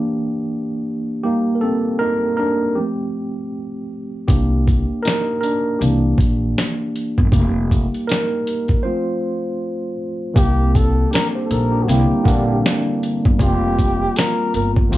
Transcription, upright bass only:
4.29 C2
5.81 C2
6.18 A#1
7.18 G1
7.32 F1
10.36 C2
11.51 A#1
11.88 C2
12.11 muted upright bass stroke
12.26 A#1
13.26 G1
13.40 F1
14.54 G1
14.92 D2

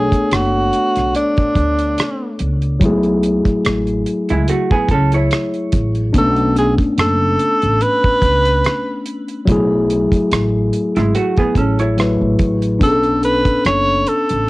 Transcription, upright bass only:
0.13 muted upright bass stroke
0.32 F#1
0.97 B1
1.56 D2
2.40 C#2
2.81 B1
3.46 muted upright bass stroke
3.66 A1
4.31 C#2
4.72 muted upright bass stroke
4.89 C#2
5.73 A1
6.15 B1
6.98 F#1
7.63 A1
8.22 C#2
9.48 B1
10.12 muted upright bass stroke
10.32 A1
10.97 G#1
11.39 muted upright bass stroke
11.56 A1
12.22 A1
12.40 A1
12.82 B1
13.46 muted upright bass stroke
13.65 F#1
14.31 A1

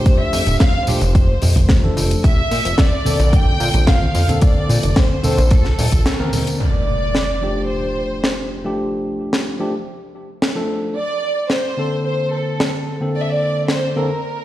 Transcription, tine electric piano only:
Already playing: F3 A3 D4 G4
0.87 F3 A3 D4 G4
1.83 F3 A3 D4 A4
3.05 D3 A#3 C4 A4
4.28 D3 A#3 C4 A4
5.23 D3 A#3 C4 A4
6.19 D3 A#3 C4 A#4
7.41 F3 A3 D4 G4
8.64 F3 A3 D4 G4
9.59 F3 A3 D4 G4
10.55 F3 A3 D4 A4
11.77 D3 A#3 C4 A4
13.00 D3 A#3 C4 A4
13.96 D3 A#3 C4 A4

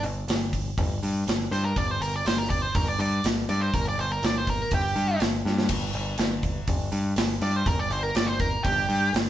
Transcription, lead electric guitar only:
1.52 C5
1.65 A#4
1.77 D5
1.91 C5
2.02 A#4
2.16 D5
2.27 C5
2.38 A#4
2.50 D5
2.62 C5
2.75 A#4
2.88 D5
3.01 D5
3.49 D5
3.61 C5
3.74 A#4
3.89 D5
4.00 C5
4.12 A#4
4.26 D5
4.38 C5
4.50 A#4
4.74 G4
7.43 D5
7.56 C5
7.67 A#4
7.79 D5
7.92 C5
8.03 A#4
8.16 D5
8.26 C5
8.40 A#4
8.63 G4

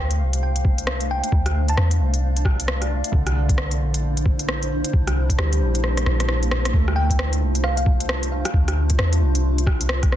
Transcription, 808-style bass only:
Already playing: D2
0.19 C2
1.32 D2
1.77 E2
2.00 C2
3.13 C2
3.81 A#1
4.94 C2
5.38 D2
5.60 A#1
6.06 A#1
6.74 D2
7.41 C2
8.54 D2
8.99 E2
9.21 C2

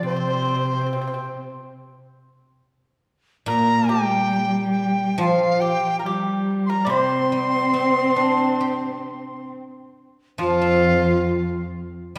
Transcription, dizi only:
0.05 C5
3.48 A#5
3.89 G5
4.72 G5
5.16 G5
5.21 F5
5.60 G5
5.99 A#5
6.66 A#5 C6
6.87 B5
6.99 C6
10.40 F4

